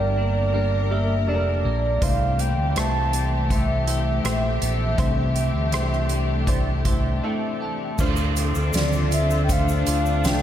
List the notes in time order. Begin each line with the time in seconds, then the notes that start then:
Already playing: G1 G2 D3 G3 A#3 D4 A#4 D5
0.17 D4
0.52 G3 A#3 D4 A#4
0.90 G3 D4 G4 A#4 E5
1.27 F1 G3 D4 A4 D5
1.34 A#4
1.65 A#1 A#3
2.01 C2 G2 C3 E3 A3 C4 G4 C5 F5, kick, closed hi-hat
2.39 C4 G5, closed hi-hat
2.58 D2
2.75 C2 A3 E4 C5 A5, cross-stick, closed hi-hat
3.13 C4, closed hi-hat
3.50 A3 E4 C5 E5, kick, closed hi-hat
3.87 A3 E4 G4 C5, closed hi-hat
4.23 A#1 A3 C4 E4 C5, cross-stick, closed hi-hat
4.61 A#1 A3, closed hi-hat
4.98 C2 G2 C3 A3 D4 E4 C5, kick, closed hi-hat
5.36 C4, closed hi-hat
5.54 D2
5.72 C2 A3 E4 C5, cross-stick, closed hi-hat
5.93 cross-stick
6.09 C4 C5, closed hi-hat
6.47 A3 E4 C5 D5, kick, closed hi-hat
6.85 A3 E4 G4 C5 E5, kick, closed hi-hat
7.23 A3 C4 E4 A4 G5
7.61 A3 A5
7.99 D2 A2 D3 A3 C4 D4 F4 A4 C5, kick, crash, shaker
8.16 shaker
8.36 C4, closed hi-hat, shaker
8.55 D2, shaker
8.73 D2 A3 D4 F4 D5, snare, closed hi-hat, shaker
8.93 shaker
9.11 F4 E5, closed hi-hat, shaker
9.30 shaker
9.44 G5
9.49 A3 D4 F4 C5 F5, kick, closed hi-hat, shaker
9.69 shaker
9.86 D2 A3 C4 D4 F4 C5, closed hi-hat, shaker
10.06 shaker
10.24 C2 A3 D4 F4 C5 G5, snare, closed hi-hat, shaker